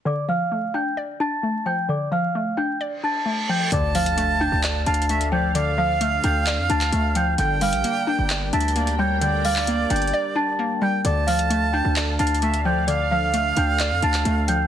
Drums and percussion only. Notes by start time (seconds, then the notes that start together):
3.72 closed hi-hat
3.95 closed hi-hat, open hi-hat
4.06 closed hi-hat
4.18 closed hi-hat
4.63 clap, closed hi-hat
4.86 closed hi-hat
4.94 closed hi-hat
5.02 closed hi-hat
5.09 closed hi-hat
5.21 closed hi-hat
5.55 closed hi-hat
6.01 closed hi-hat
6.24 closed hi-hat
6.47 clap, closed hi-hat
6.70 closed hi-hat
6.81 clap, closed hi-hat
6.93 closed hi-hat
7.15 closed hi-hat
7.38 closed hi-hat
7.61 closed hi-hat, open hi-hat
7.73 closed hi-hat
7.84 closed hi-hat
8.30 clap, closed hi-hat
8.53 closed hi-hat
8.61 closed hi-hat
8.68 closed hi-hat
8.76 closed hi-hat
8.87 closed hi-hat
9.22 closed hi-hat
9.45 open hi-hat
9.56 clap
9.67 closed hi-hat
9.90 closed hi-hat
9.96 closed hi-hat
10.02 closed hi-hat
10.07 closed hi-hat
11.05 closed hi-hat
11.28 closed hi-hat, open hi-hat
11.39 closed hi-hat
11.50 closed hi-hat
11.96 clap, closed hi-hat
12.19 closed hi-hat
12.27 closed hi-hat
12.35 closed hi-hat
12.42 closed hi-hat
12.54 closed hi-hat
12.88 closed hi-hat
13.34 closed hi-hat
13.56 closed hi-hat
13.79 clap, closed hi-hat
14.02 closed hi-hat
14.14 clap, closed hi-hat
14.25 closed hi-hat
14.48 closed hi-hat